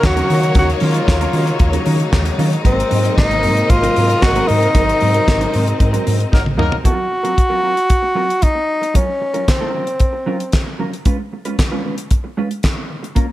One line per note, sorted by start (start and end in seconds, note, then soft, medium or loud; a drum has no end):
0.00 2.61 C#3 medium
0.00 2.61 D#3 medium
0.00 2.61 F#3 medium
0.00 0.52 A#3 medium
0.00 2.61 A#3 medium
0.00 6.82 D#4 medium
0.00 2.61 C#5 medium
0.00 muted clean electric guitar stroke soft
0.00 kick loud
0.00 snare loud
0.04 0.20 D#2 loud
0.04 0.57 F#4 medium
0.04 clap medium
0.16 0.27 F#3 medium
0.16 0.28 C#4 medium
0.16 0.28 F4 medium
0.16 0.29 A#4 medium
0.16 closed hi-hat medium
0.29 0.57 D#3 medium
0.29 0.40 F#3 medium
0.29 0.40 C#4 medium
0.29 0.40 F4 medium
0.29 0.40 A#4 medium
0.29 open hi-hat medium
0.42 muted clean electric guitar stroke soft
0.42 closed hi-hat soft
0.55 0.72 D#2 loud
0.55 0.69 F#3 medium
0.55 6.81 G#3 medium
0.55 0.67 C#4 medium
0.55 0.67 F4 medium
0.55 0.70 F#4 medium
0.55 0.67 A#4 medium
0.55 kick loud
0.55 closed hi-hat medium
0.68 muted clean electric guitar stroke soft
0.68 closed hi-hat soft
0.80 0.98 D#3 medium
0.80 0.92 F#3 medium
0.80 0.92 C#4 medium
0.80 0.92 F4 medium
0.80 1.83 F4 medium
0.80 0.92 A#4 medium
0.80 open hi-hat medium
0.94 1.06 F#3 medium
0.94 1.06 C#4 medium
0.94 1.05 F4 medium
0.94 1.05 C5 medium
0.94 closed hi-hat soft
1.08 1.25 D#2 loud
1.08 kick loud
1.08 snare loud
1.08 clap medium
1.21 1.32 F#3 medium
1.21 1.33 C#4 medium
1.21 1.33 F4 medium
1.21 1.34 A#4 medium
1.21 closed hi-hat medium
1.33 1.50 D#3 loud
1.33 1.44 F#3 medium
1.33 1.44 C#4 medium
1.33 1.45 F4 medium
1.33 1.45 A#4 medium
1.33 open hi-hat medium
1.47 closed hi-hat soft
1.59 1.77 D#2 loud
1.59 muted clean electric guitar stroke soft
1.59 kick loud
1.59 closed hi-hat medium
1.72 1.84 F#3 medium
1.72 1.84 C#4 medium
1.72 1.85 F4 medium
1.72 1.85 A#4 medium
1.72 closed hi-hat medium
1.85 2.03 D#3 loud
1.85 1.96 F#3 medium
1.85 1.97 C#4 medium
1.85 1.97 F4 medium
1.85 1.97 A#4 medium
1.85 open hi-hat medium
1.99 muted clean electric guitar stroke soft
1.99 closed hi-hat soft
2.12 2.29 D#2 medium
2.12 muted clean electric guitar stroke soft
2.12 kick loud
2.12 snare loud
2.12 clap medium
2.25 muted clean electric guitar stroke medium
2.25 closed hi-hat medium
2.38 2.55 D#3 medium
2.38 2.52 F#3 medium
2.38 2.51 C#4 medium
2.38 2.51 F4 medium
2.38 2.50 A#4 medium
2.38 open hi-hat medium
2.51 muted clean electric guitar stroke soft
2.51 closed hi-hat soft
2.64 2.82 G#1 loud
2.64 6.81 C3 medium
2.64 2.78 F#3 medium
2.64 6.81 F#3 medium
2.64 4.73 A#3 medium
2.64 2.77 C4 medium
2.64 6.81 C4 medium
2.64 3.14 C4 medium
2.64 2.77 D#4 loud
2.64 6.81 A#4 medium
2.64 2.76 A#4 loud
2.64 6.81 D#5 medium
2.64 kick loud
2.64 closed hi-hat medium
2.77 muted clean electric guitar stroke soft
2.77 closed hi-hat soft
2.90 3.08 G#2 medium
2.90 3.01 F#3 medium
2.90 3.02 C4 medium
2.90 3.02 D#4 medium
2.90 3.02 A#4 medium
2.90 open hi-hat medium
3.03 3.15 F#3 medium
3.03 3.15 C4 medium
3.03 3.14 D#4 medium
3.03 3.14 A#4 medium
3.03 closed hi-hat soft
3.17 3.46 G#1 loud
3.17 3.72 D#4 medium
3.17 muted clean electric guitar stroke soft
3.17 kick loud
3.17 snare loud
3.17 clap medium
3.30 3.42 F#3 medium
3.30 3.43 C4 medium
3.30 3.43 D#4 medium
3.30 3.44 A#4 medium
3.30 closed hi-hat medium
3.43 3.61 G#2 loud
3.43 3.54 F#3 medium
3.43 3.54 C4 medium
3.43 3.55 D#4 medium
3.43 3.55 A#4 medium
3.43 open hi-hat medium
3.56 muted clean electric guitar stroke soft
3.56 closed hi-hat soft
3.69 3.86 G#1 loud
3.69 4.24 F4 loud
3.69 muted clean electric guitar stroke soft
3.69 kick loud
3.69 closed hi-hat medium
3.82 3.94 F#3 medium
3.82 3.94 C4 medium
3.82 3.95 D#4 medium
3.82 3.96 A#4 medium
3.82 closed hi-hat medium
3.95 4.13 G#2 medium
3.95 4.06 F#3 medium
3.95 4.06 C4 medium
3.95 4.07 D#4 medium
3.95 4.07 A#4 medium
3.95 open hi-hat medium
4.09 muted clean electric guitar stroke soft
4.09 closed hi-hat soft
4.22 4.39 G#1 medium
4.22 4.49 F#4 loud
4.22 muted clean electric guitar stroke soft
4.22 kick loud
4.22 snare loud
4.22 clap medium
4.35 4.46 F#3 medium
4.35 4.47 C4 medium
4.35 4.47 D#4 medium
4.35 4.48 A#4 medium
4.35 closed hi-hat soft
4.48 4.66 G#2 medium
4.48 4.59 F#3 medium
4.48 4.59 C4 medium
4.48 6.06 D#4 medium
4.48 4.59 D#4 medium
4.48 4.59 A#4 medium
4.48 open hi-hat medium
4.61 muted clean electric guitar stroke soft
4.61 closed hi-hat soft
4.74 4.92 G#1 loud
4.74 4.88 F#3 medium
4.74 6.83 C4 medium
4.74 4.88 C4 medium
4.74 4.87 D#4 medium
4.74 4.87 A#4 medium
4.74 kick loud
4.74 closed hi-hat medium
4.88 muted clean electric guitar stroke soft
4.88 closed hi-hat soft
5.00 5.19 G#2 medium
5.00 5.12 F#3 medium
5.00 5.12 C4 medium
5.00 5.12 D#4 medium
5.00 5.12 A#4 medium
5.00 open hi-hat medium
5.14 5.25 F#3 medium
5.14 5.25 C4 medium
5.14 5.25 D#4 medium
5.14 5.25 C5 medium
5.14 closed hi-hat soft
5.28 5.45 G#1 medium
5.28 kick loud
5.28 snare loud
5.28 clap medium
5.40 5.52 F#3 medium
5.40 5.52 C4 medium
5.40 5.52 D#4 medium
5.40 5.53 A#4 medium
5.40 closed hi-hat medium
5.53 5.71 G#2 loud
5.53 5.64 F#3 medium
5.53 5.64 C4 medium
5.53 5.64 D#4 medium
5.53 5.64 A#4 medium
5.53 open hi-hat medium
5.66 muted clean electric guitar stroke soft
5.66 closed hi-hat soft
5.80 5.97 G#2 medium
5.80 muted clean electric guitar stroke soft
5.80 kick loud
5.80 closed hi-hat medium
5.93 6.04 F#3 medium
5.93 6.05 C4 medium
5.93 6.05 D#4 medium
5.93 6.06 A#4 medium
5.93 closed hi-hat medium
6.06 6.24 G#2 loud
6.06 6.16 F#3 medium
6.06 6.17 C4 medium
6.06 6.17 D#4 medium
6.06 6.17 A#4 medium
6.06 open hi-hat medium
6.19 muted clean electric guitar stroke soft
6.19 closed hi-hat soft
6.32 6.60 G#1 medium
6.32 6.41 F#3 medium
6.32 6.41 A#3 medium
6.32 6.40 D#4 medium
6.32 6.41 A#4 medium
6.32 muted clean electric guitar stroke soft
6.32 kick loud
6.32 snare medium
6.45 muted clean electric guitar stroke soft
6.45 high tom medium
6.57 6.76 D2 medium
6.57 6.72 F#3 medium
6.57 6.75 F#3 medium
6.57 6.75 A#3 medium
6.57 6.70 C4 medium
6.57 6.75 D#4 medium
6.57 6.70 D#4 medium
6.57 6.75 A#4 loud
6.57 6.69 A#4 medium
6.57 mid tom medium
6.70 muted clean electric guitar stroke soft
6.70 floor tom medium
6.84 7.04 F#3 medium
6.84 6.97 C4 medium
6.84 6.96 F4 medium
6.84 8.45 F#4 loud
6.84 6.96 A#4 medium
6.84 kick medium
6.84 closed hi-hat medium
6.97 muted clean electric guitar stroke soft
7.11 muted clean electric guitar stroke soft
7.23 7.35 F#3 medium
7.23 7.35 C4 medium
7.23 7.35 F4 medium
7.23 7.34 A#4 medium
7.23 closed hi-hat soft
7.38 kick loud
7.38 closed hi-hat medium
7.50 7.61 F#3 medium
7.50 7.62 C4 medium
7.50 7.62 F4 medium
7.50 7.63 A#4 medium
7.63 7.74 F#3 medium
7.63 7.74 C4 medium
7.63 7.74 F4 medium
7.63 7.75 A#4 medium
7.76 muted clean electric guitar stroke soft
7.76 closed hi-hat soft
7.89 muted clean electric guitar stroke soft
7.89 kick loud
7.89 closed hi-hat medium
8.02 muted clean electric guitar stroke soft
8.15 8.29 F#3 medium
8.15 8.28 C4 medium
8.15 8.27 F4 medium
8.15 8.27 A#4 medium
8.28 muted clean electric guitar stroke soft
8.28 closed hi-hat soft
8.41 8.98 D#4 medium
8.41 muted clean electric guitar stroke soft
8.41 kick loud
8.41 closed hi-hat medium
8.55 muted clean electric guitar stroke soft
8.81 muted clean electric guitar stroke soft
8.81 closed hi-hat soft
8.94 9.08 F#3 medium
8.94 9.08 C#4 medium
8.94 9.51 C#4 medium
8.94 9.08 F4 medium
8.94 9.07 A#4 medium
8.94 kick loud
8.94 closed hi-hat medium
9.09 muted clean electric guitar stroke soft
9.21 muted clean electric guitar stroke soft
9.34 9.46 F#3 soft
9.34 9.46 C#4 medium
9.34 9.45 F4 medium
9.34 9.45 A#4 medium
9.34 closed hi-hat soft
9.47 10.80 C4 medium
9.47 muted clean electric guitar stroke soft
9.47 kick loud
9.47 snare loud
9.47 clap medium
9.47 closed hi-hat medium
9.61 9.72 F#3 medium
9.61 9.73 C#4 medium
9.61 9.73 F4 medium
9.61 9.73 A#4 medium
9.73 9.85 F#3 soft
9.73 9.85 C#4 medium
9.73 9.85 F4 medium
9.73 9.85 A#4 medium
9.86 muted clean electric guitar stroke soft
9.86 closed hi-hat soft
10.00 muted clean electric guitar stroke soft
10.00 kick loud
10.00 closed hi-hat medium
10.13 muted clean electric guitar stroke soft
10.26 10.40 F#3 medium
10.26 10.39 C#4 medium
10.26 10.39 F4 medium
10.26 10.38 A#4 medium
10.39 muted clean electric guitar stroke soft
10.39 closed hi-hat soft
10.52 kick loud
10.52 snare loud
10.52 clap medium
10.52 closed hi-hat medium
10.66 muted clean electric guitar stroke soft
10.79 10.93 F#3 medium
10.79 10.93 C#4 medium
10.79 10.92 F4 medium
10.79 10.91 A#4 medium
10.93 muted clean electric guitar stroke soft
10.93 closed hi-hat soft
11.05 11.19 G#3 medium
11.05 11.19 C#4 medium
11.05 11.18 F4 medium
11.05 11.18 B4 medium
11.05 kick loud
11.05 closed hi-hat medium
11.19 muted clean electric guitar stroke soft
11.33 muted clean electric guitar stroke soft
11.45 11.57 G#3 medium
11.45 11.57 C#4 medium
11.45 11.56 F4 medium
11.45 11.56 B4 medium
11.45 closed hi-hat soft
11.59 kick loud
11.59 snare loud
11.59 clap medium
11.59 closed hi-hat medium
11.71 11.83 G#3 medium
11.71 11.83 C#4 medium
11.71 11.84 F4 medium
11.71 11.84 B4 medium
11.84 11.95 G#3 medium
11.84 11.95 C#4 medium
11.84 11.96 F4 medium
11.84 11.96 B4 medium
11.97 muted clean electric guitar stroke soft
11.97 closed hi-hat soft
12.11 muted clean electric guitar stroke soft
12.11 kick loud
12.11 closed hi-hat medium
12.24 muted clean electric guitar stroke soft
12.37 12.51 G#3 medium
12.37 12.50 C#4 medium
12.37 12.50 F4 medium
12.37 12.49 B4 medium
12.50 muted clean electric guitar stroke soft
12.50 closed hi-hat soft
12.63 muted clean electric guitar stroke soft
12.63 kick loud
12.63 snare loud
12.63 clap medium
12.63 closed hi-hat medium
12.76 muted clean electric guitar stroke soft
13.03 muted clean electric guitar stroke soft
13.03 closed hi-hat soft
13.15 13.29 A#3 medium
13.15 13.28 C#4 medium
13.15 13.28 F4 medium
13.15 13.27 A#4 medium
13.15 kick loud
13.15 closed hi-hat medium
13.28 muted clean electric guitar stroke soft